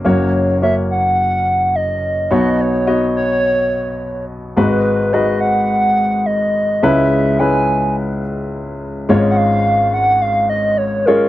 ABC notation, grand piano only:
X:1
M:4/4
L:1/8
Q:1/4=106
K:C#dor
V:1 name="Grand piano"
[A,CFc] z [A,CFc]3 z3 | [B,DFc] z [B,DFd]3 z3 | [G,DFB] z [G,DFB]3 z3 | [G,CEB] z [G,CEB]3 z3 |
[G,C^Ec]3 z4 [G,CEc] |]
V:2 name="Grand piano" clef=bass
[F,,,F,,]8 | [B,,,B,,]8 | [G,,,G,,]8 | [C,,C,]8 |
[G,,,G,,]8 |]